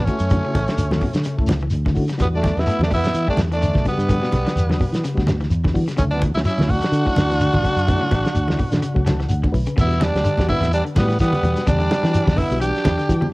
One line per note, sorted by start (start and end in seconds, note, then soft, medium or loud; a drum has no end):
0.03 0.15 A3 medium
0.03 1.48 A3 medium
0.03 1.48 C#4 medium
0.03 0.16 C#4 medium
0.03 0.15 E4 medium
0.03 0.16 F#4 medium
0.03 1.47 C#5 medium
0.03 muted fingered electric bass stroke soft
0.03 kick medium
0.03 high conga medium
0.03 shekere soft
0.07 muted clean electric guitar stroke medium
0.07 closed hi-hat medium
0.19 0.41 F#2 medium
0.19 shekere medium
0.30 0.41 D3 loud
0.30 0.51 A3 medium
0.30 0.51 C#4 medium
0.30 0.51 E4 medium
0.30 0.52 F#4 medium
0.30 kick loud
0.30 closed hi-hat medium
0.30 high conga soft
0.30 low conga medium
0.30 shekere medium
0.45 0.63 C#3 medium
0.55 0.66 A1 loud
0.55 kick medium
0.55 closed hi-hat medium
0.55 high conga loud
0.67 0.87 D3 medium
0.67 snare medium
0.67 closed hi-hat medium
0.67 shekere soft
0.77 0.98 D2 loud
0.77 closed hi-hat medium
0.77 shekere medium
0.91 1.00 D3 medium
0.91 1.06 A3 medium
0.91 1.06 C#4 medium
0.91 1.06 E4 medium
0.91 1.06 F#4 loud
0.91 snare medium
0.91 high conga loud
1.01 1.21 B2 medium
1.01 kick medium
1.01 open hi-hat medium
1.01 low conga medium
1.01 shekere soft
1.14 1.24 D3 medium
1.14 snare medium
1.14 closed hi-hat medium
1.14 shekere medium
1.24 1.45 C#3 medium
1.24 snare soft
1.24 closed hi-hat medium
1.24 high conga soft
1.24 shekere medium
1.37 1.68 C#2 medium
1.37 1.57 A3 loud
1.37 1.57 C#4 medium
1.37 1.58 E4 loud
1.37 1.58 A4 loud
1.37 kick medium
1.47 1.59 D3 medium
1.47 closed hi-hat medium
1.47 high conga medium
1.47 shekere medium
1.51 snare medium
1.60 1.81 E3 medium
1.60 shekere soft
1.71 1.93 D2 medium
1.71 closed hi-hat medium
1.71 shekere medium
1.86 2.05 D3 medium
1.86 kick medium
1.86 snare soft
1.86 high conga medium
1.94 2.08 D3 medium
1.94 2.04 A3 medium
1.94 2.04 C#4 medium
1.94 2.04 E4 medium
1.94 2.04 F#4 loud
1.94 kick medium
1.94 open hi-hat medium
1.94 shekere soft
2.08 2.18 C#3 medium
2.08 snare soft
2.08 closed hi-hat medium
2.08 shekere medium
2.18 2.52 E2 loud
2.18 2.39 E3 loud
2.18 2.39 G3 medium
2.18 2.27 G3 medium
2.18 2.39 B3 medium
2.18 2.39 D4 medium
2.18 2.39 F#4 medium
2.18 2.27 B4 medium
2.18 kick loud
2.18 closed hi-hat medium
2.18 high conga soft
2.18 low conga medium
2.18 shekere medium
2.22 2.28 B3 loud
2.34 2.60 A3 medium
2.34 2.61 D4 medium
2.34 2.60 D5 medium
2.43 2.62 G3 medium
2.43 kick medium
2.43 snare soft
2.43 closed hi-hat medium
2.43 high conga loud
2.56 2.66 E2 medium
2.56 2.81 B3 medium
2.56 2.82 E4 loud
2.56 2.81 E5 medium
2.56 snare medium
2.56 shekere soft
2.66 2.86 A3 medium
2.66 snare soft
2.66 closed hi-hat medium
2.66 high conga soft
2.66 shekere loud
2.79 3.00 E2 medium
2.79 2.95 G3 medium
2.79 2.95 B3 medium
2.79 2.95 D4 medium
2.79 2.95 F#4 medium
2.79 snare medium
2.79 high conga medium
2.83 2.92 A3 medium
2.83 2.92 D4 medium
2.83 2.92 D5 medium
2.90 3.01 G3 medium
2.90 3.27 B3 loud
2.90 3.26 E4 loud
2.90 3.27 E5 medium
2.90 kick medium
2.90 open hi-hat medium
2.90 low conga medium
2.90 shekere soft
3.04 3.23 E3 medium
3.04 snare medium
3.04 closed hi-hat medium
3.04 low conga medium
3.04 shekere medium
3.14 3.26 E3 medium
3.14 closed hi-hat medium
3.14 shekere medium
3.27 3.47 G3 medium
3.27 3.46 G3 medium
3.27 3.40 A3 medium
3.27 3.47 B3 medium
3.27 3.47 D4 medium
3.27 3.40 D4 loud
3.27 3.47 G4 medium
3.27 3.41 D5 medium
3.27 kick medium
3.37 3.70 E2 medium
3.37 snare medium
3.37 closed hi-hat soft
3.37 high conga loud
3.37 shekere medium
3.52 3.60 E3 medium
3.52 3.85 A3 medium
3.52 3.84 D4 loud
3.52 3.85 D5 medium
3.52 closed hi-hat soft
3.52 shekere soft
3.62 3.81 D3 medium
3.62 closed hi-hat medium
3.62 shekere medium
3.75 3.84 B1 medium
3.75 kick medium
3.75 snare soft
3.75 high conga medium
3.84 4.05 C#3 medium
3.84 3.93 G3 medium
3.84 3.94 B3 medium
3.84 3.94 D4 medium
3.84 3.94 F#4 medium
3.84 kick medium
3.84 closed hi-hat medium
3.84 high conga medium
3.84 shekere soft
3.88 5.25 G3 medium
3.88 5.25 B3 medium
3.88 5.25 B4 medium
3.98 4.19 G2 medium
3.98 shekere medium
4.08 4.20 D3 medium
4.08 4.29 G3 medium
4.08 4.29 B3 medium
4.08 4.29 D4 medium
4.08 4.30 F#4 medium
4.08 kick medium
4.08 closed hi-hat medium
4.08 high conga soft
4.08 low conga medium
4.08 shekere medium
4.23 4.41 B2 medium
4.23 snare soft
4.32 4.44 B1 loud
4.32 kick medium
4.32 snare soft
4.32 closed hi-hat medium
4.32 high conga medium
4.46 4.65 D3 medium
4.46 snare medium
4.46 closed hi-hat soft
4.46 shekere soft
4.56 4.77 E2 loud
4.56 closed hi-hat medium
4.56 high conga soft
4.56 shekere loud
4.69 4.79 D3 medium
4.69 4.85 G3 medium
4.69 4.84 B3 medium
4.69 4.85 D4 medium
4.69 4.85 F#4 loud
4.69 snare medium
4.69 high conga medium
4.79 4.99 B2 medium
4.79 kick medium
4.79 open hi-hat medium
4.79 low conga medium
4.79 shekere soft
4.92 5.02 E3 medium
4.92 snare medium
4.92 closed hi-hat medium
4.92 shekere medium
5.04 5.23 C#3 medium
5.04 snare soft
5.04 closed hi-hat medium
5.04 high conga soft
5.04 shekere medium
5.14 5.47 D2 medium
5.14 5.35 G3 loud
5.14 5.36 B3 loud
5.14 5.35 D4 medium
5.14 5.36 F#4 loud
5.14 kick medium
5.19 snare soft
5.27 5.38 D3 medium
5.27 snare medium
5.27 closed hi-hat soft
5.27 high conga medium
5.27 shekere medium
5.40 5.59 E3 medium
5.40 snare soft
5.40 shekere soft
5.50 5.71 E2 medium
5.50 closed hi-hat medium
5.50 shekere medium
5.64 5.83 D3 medium
5.64 kick medium
5.64 snare soft
5.64 high conga medium
5.73 5.86 E3 medium
5.73 5.83 G3 medium
5.73 5.83 B3 medium
5.73 5.83 D4 medium
5.73 5.83 F#4 loud
5.73 kick medium
5.73 open hi-hat medium
5.73 shekere soft
5.88 5.96 C#3 medium
5.88 snare soft
5.88 closed hi-hat medium
5.88 shekere medium
5.97 6.31 D2 loud
5.97 6.16 C#3 loud
5.97 6.18 F#3 medium
5.97 6.18 A3 medium
5.97 6.05 A3 medium
5.97 6.19 C#4 medium
5.97 6.04 C#4 loud
5.97 6.19 E4 loud
5.97 6.04 C#5 medium
5.97 kick medium
5.97 closed hi-hat medium
5.97 high conga soft
5.97 low conga medium
5.97 shekere medium
6.11 6.23 B3 medium
6.11 6.22 D4 medium
6.11 6.23 D5 medium
6.20 6.40 E3 medium
6.20 kick medium
6.20 closed hi-hat medium
6.20 high conga medium
6.34 6.44 D2 medium
6.34 6.42 C#4 medium
6.34 6.39 E4 medium
6.34 6.41 E5 medium
6.34 snare medium
6.34 shekere soft
6.45 6.64 F#3 medium
6.45 6.73 C#4 medium
6.45 6.72 E4 loud
6.45 6.70 E5 medium
6.45 snare soft
6.45 closed hi-hat medium
6.45 high conga soft
6.45 shekere medium
6.58 6.79 D2 medium
6.58 6.74 F#3 medium
6.58 6.74 A3 medium
6.58 6.74 C#4 medium
6.58 6.74 E4 medium
6.58 snare medium
6.58 high conga medium
6.68 6.80 E3 medium
6.68 9.30 D4 loud
6.68 9.30 F#4 loud
6.68 9.29 F#5 loud
6.68 kick medium
6.68 open hi-hat medium
6.68 low conga medium
6.68 shekere soft
6.81 7.01 D3 medium
6.81 snare medium
6.81 closed hi-hat soft
6.81 shekere medium
6.92 7.04 D3 medium
6.92 closed hi-hat medium
6.92 high conga soft
6.92 shekere medium
7.05 7.25 F#3 medium
7.05 7.25 A3 medium
7.05 7.25 C#4 medium
7.05 7.25 E4 medium
7.05 kick medium
7.16 7.49 D2 medium
7.16 snare medium
7.16 closed hi-hat medium
7.16 high conga medium
7.16 shekere medium
7.30 7.38 E3 medium
7.30 snare soft
7.30 closed hi-hat medium
7.30 shekere soft
7.40 7.60 D3 medium
7.40 closed hi-hat medium
7.40 shekere medium
7.54 7.63 A1 medium
7.54 kick medium
7.54 high conga medium
7.63 7.83 C#3 medium
7.63 7.72 F#3 medium
7.63 7.73 A3 medium
7.63 7.72 C#4 medium
7.63 7.73 F#4 loud
7.63 muted fingered electric bass stroke soft
7.63 kick medium
7.63 closed hi-hat medium
7.63 shekere soft
7.76 7.97 F#2 medium
7.76 shekere medium
7.87 7.98 D3 medium
7.87 8.08 F#3 loud
7.87 8.08 A3 medium
7.87 8.08 C#4 loud
7.87 8.08 E4 loud
7.87 kick medium
7.87 closed hi-hat medium
7.87 high conga soft
7.87 low conga medium
7.87 shekere medium
8.01 8.20 C#3 medium
8.11 8.23 A1 loud
8.11 kick medium
8.11 snare soft
8.11 closed hi-hat medium
8.11 high conga loud
8.24 8.43 D3 medium
8.24 snare medium
8.24 closed hi-hat soft
8.24 shekere soft
8.35 8.55 D2 loud
8.35 closed hi-hat medium
8.35 shekere medium
8.47 8.56 D3 medium
8.47 8.63 F#3 medium
8.47 8.63 A3 medium
8.47 8.63 C#4 medium
8.47 8.63 E4 loud
8.47 snare medium
8.47 high conga medium
8.59 8.78 B2 medium
8.59 kick medium
8.59 open hi-hat medium
8.59 low conga medium
8.59 shekere soft
8.72 8.81 D3 medium
8.72 snare medium
8.72 closed hi-hat soft
8.72 low conga medium
8.72 shekere medium
8.82 9.01 C#3 medium
8.82 closed hi-hat medium
8.82 shekere medium
8.94 9.25 C#2 medium
8.94 9.14 F#3 medium
8.94 9.15 A3 medium
8.94 9.15 C#4 medium
8.94 9.15 F#4 loud
8.94 kick medium
9.05 9.17 D3 medium
9.05 9.27 A5 medium
9.05 snare medium
9.05 closed hi-hat medium
9.05 high conga medium
9.05 shekere medium
9.20 9.38 E3 medium
9.20 snare soft
9.20 shekere soft
9.29 9.51 D2 medium
9.29 9.51 F#5 medium
9.29 closed hi-hat medium
9.29 shekere medium
9.43 9.62 D3 medium
9.43 kick medium
9.43 high conga medium
9.52 9.65 B1 medium
9.52 9.62 F#3 loud
9.52 9.62 A3 medium
9.52 9.62 C#4 medium
9.52 9.62 E4 loud
9.52 9.75 B4 medium
9.52 kick medium
9.52 open hi-hat medium
9.52 shekere soft
9.66 9.75 C#3 medium
9.66 closed hi-hat medium
9.66 shekere medium
9.76 10.10 E2 loud
9.76 9.95 B2 medium
9.76 9.98 G3 medium
9.76 9.98 B3 medium
9.76 10.04 B3 medium
9.76 9.98 D4 medium
9.76 9.98 F#4 medium
9.76 10.06 E5 medium
9.76 kick loud
9.76 crash medium
9.76 high conga soft
9.76 low conga medium
9.76 shekere medium
9.81 10.05 E4 loud
9.91 closed hi-hat soft
10.00 10.19 E3 medium
10.00 10.48 G3 medium
10.00 10.49 D4 loud
10.00 snare medium
10.00 closed hi-hat medium
10.00 high conga loud
10.04 10.50 D5 medium
10.14 10.23 D2 medium
10.14 snare medium
10.14 closed hi-hat soft
10.14 shekere soft
10.24 10.43 D3 medium
10.24 closed hi-hat medium
10.24 high conga soft
10.24 shekere loud
10.37 10.47 E2 medium
10.37 10.57 G3 medium
10.37 10.58 B3 medium
10.37 10.58 D4 medium
10.37 10.58 F#4 medium
10.37 kick medium
10.37 snare medium
10.37 closed hi-hat soft
10.37 high conga medium
10.48 10.59 D3 medium
10.48 10.70 B3 medium
10.48 10.71 E4 loud
10.48 10.71 E5 medium
10.48 kick medium
10.48 open hi-hat medium
10.48 low conga medium
10.48 shekere soft
10.60 10.81 E2 medium
10.60 10.80 E3 medium
10.60 snare soft
10.60 closed hi-hat soft
10.60 low conga medium
10.60 shekere medium
10.72 10.83 G3 medium
10.72 10.84 D4 medium
10.72 10.84 D5 medium
10.72 closed hi-hat medium
10.72 high conga soft
10.72 shekere medium
10.85 11.04 D3 medium
10.85 closed hi-hat soft
10.95 11.16 A2 medium
10.95 11.12 G3 medium
10.95 11.18 G3 medium
10.95 11.12 B3 medium
10.95 11.19 B3 medium
10.95 11.12 D4 medium
10.95 11.12 F#4 medium
10.95 11.17 B4 medium
10.95 kick medium
10.95 snare medium
10.95 closed hi-hat medium
10.95 high conga medium
10.95 shekere medium
11.08 11.17 E3 medium
11.08 snare soft
11.08 closed hi-hat soft
11.08 shekere soft
11.19 11.31 E3 loud
11.19 11.64 G3 medium
11.19 11.64 B3 medium
11.19 11.63 B4 medium
11.19 kick medium
11.19 snare soft
11.19 closed hi-hat medium
11.19 shekere medium
11.33 closed hi-hat soft
11.33 high conga medium
11.43 11.54 E2 medium
11.43 11.62 B2 medium
11.43 11.63 G3 medium
11.43 11.63 B3 medium
11.43 11.63 D4 medium
11.43 11.63 F#4 medium
11.43 closed hi-hat medium
11.43 high conga medium
11.43 shekere soft
11.56 snare soft
11.56 shekere medium
11.66 11.88 E2 loud
11.66 11.77 C#3 medium
11.66 12.39 G3 medium
11.66 12.40 D4 loud
11.66 12.40 D5 medium
11.66 kick loud
11.66 closed hi-hat medium
11.66 high conga soft
11.66 low conga medium
11.66 shekere medium
11.79 11.98 D3 medium
11.79 closed hi-hat soft
11.91 snare medium
11.91 closed hi-hat medium
11.91 high conga medium
12.02 12.24 E3 medium
12.02 12.22 E3 medium
12.02 12.18 G3 medium
12.02 12.18 B3 medium
12.02 12.18 D4 medium
12.02 12.18 F#4 medium
12.02 snare medium
12.02 closed hi-hat soft
12.02 shekere soft
12.14 closed hi-hat medium
12.14 high conga soft
12.14 shekere loud
12.26 12.36 E2 loud
12.26 12.35 C#3 medium
12.26 kick medium
12.26 snare medium
12.26 closed hi-hat soft
12.26 high conga medium
12.36 12.56 D3 medium
12.36 12.59 B3 medium
12.36 12.61 E4 loud
12.36 12.59 E5 medium
12.36 kick medium
12.36 snare soft
12.36 open hi-hat medium
12.36 low conga medium
12.36 shekere soft
12.50 12.71 B1 medium
12.50 12.70 G3 medium
12.50 12.71 B3 medium
12.50 12.70 D4 medium
12.50 12.71 F#4 medium
12.50 shekere medium
12.60 12.79 E3 medium
12.60 13.27 D4 medium
12.60 13.28 G4 loud
12.60 13.27 G5 medium
12.60 closed hi-hat medium
12.60 high conga soft
12.60 shekere medium
12.75 snare soft
12.75 closed hi-hat soft
12.84 12.97 E2 medium
12.84 12.95 E3 medium
12.84 kick medium
12.84 snare medium
12.84 closed hi-hat medium
12.84 high conga loud
12.84 shekere medium
12.98 13.17 D3 medium
12.98 snare soft
12.98 closed hi-hat soft
12.98 shekere soft
13.09 13.20 E3 loud
13.09 13.25 G3 medium
13.09 13.25 B3 medium
13.09 13.25 D4 medium
13.09 13.26 F#4 medium
13.09 kick medium
13.09 snare soft
13.09 closed hi-hat medium
13.09 shekere medium
13.21 13.33 E3 medium
13.21 high conga medium